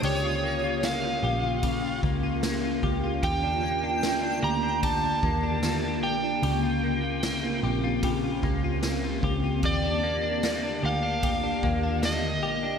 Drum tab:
RD |x-x-x-x-|x-x-x-x-|x-x-x-x-|x-x-x-x-|
TB |--x---x-|--x---x-|--x---x-|--x---x-|
SD |--o---o-|--o---o-|--o---o-|--o---o-|
BD |----oo-o|o---oo--|----oo-o|o---oo--|